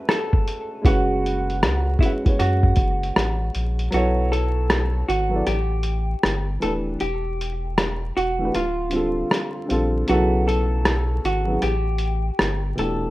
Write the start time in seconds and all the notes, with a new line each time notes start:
Already playing: G#3 A3 C#4 F#4 B4 C#5 E5
0.09 A4, cross-stick, closed hi-hat
0.33 kick
0.47 closed hi-hat
0.82 F#1 G#3 C#4 F#4, kick, closed hi-hat
0.86 F#4 B4 F#5
1.26 closed hi-hat
1.50 closed hi-hat
1.63 C#2, cross-stick, closed hi-hat
1.99 G#3 C#4 E4 F#4, kick, closed hi-hat
2.04 B4 F#5
2.23 G#3 C#4 F#4, kick, closed hi-hat
2.27 B4 C#5
2.39 F#2 F#4, cross-stick, closed hi-hat
2.63 kick
2.76 F#1, kick, closed hi-hat
3.03 closed hi-hat
3.16 A1, cross-stick, closed hi-hat
3.55 A#1, closed hi-hat
3.79 closed hi-hat
3.90 B1 F#3 B3 E4 F#4, closed hi-hat
3.95 A4 C#5
4.32 A4, closed hi-hat
4.70 cross-stick, closed hi-hat
5.08 G#1 F#4, closed hi-hat
5.29 F#3 B3 E4
5.34 A4 D5
5.47 A1 G4, cross-stick, closed hi-hat
5.83 closed hi-hat
6.23 G1, cross-stick, closed hi-hat
6.60 D#1 E3 A3 D4 A4, closed hi-hat
6.64 G4 B4
7.00 E1 G4, closed hi-hat
7.41 closed hi-hat
7.78 cross-stick, closed hi-hat
8.16 E1 F#4, closed hi-hat
8.39 E3 A3 D4
8.44 G4 B4
8.55 D1 F4, cross-stick, closed hi-hat
8.89 D3 G3 C4, closed hi-hat
8.94 F4 A4
9.31 cross-stick, closed hi-hat
9.66 D3 G3 C4
9.70 A#1 F4 A4, closed hi-hat
10.07 B1 C#3 F#3 B3 F#4, closed hi-hat
10.11 E4 A4
10.48 A4, closed hi-hat
10.85 cross-stick, closed hi-hat
11.24 G#1 F#4, closed hi-hat
11.44 C#3 F#3 B3
11.49 E4 G#4
11.62 A1 G4, cross-stick, closed hi-hat
11.98 closed hi-hat
12.39 G1, cross-stick, closed hi-hat
12.75 D#1 B2 E3 A3 A4, closed hi-hat
12.80 D4 G4